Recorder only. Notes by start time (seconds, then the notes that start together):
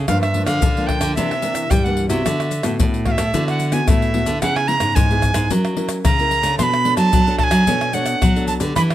0.08 F5
0.21 E5
0.46 F5
0.87 G5
1.15 E5
1.70 G5
1.84 F#5
2.09 E5
3.07 F5
3.11 E5
3.49 F#5
3.73 G#5
3.88 E5
4.42 F#5
4.56 G#5
4.68 A#5
4.95 G#5
6.05 A#5
6.58 C6
6.63 B5
6.97 A5
7.39 A5
7.44 G#5
7.94 F#5
8.47 A5
8.76 B5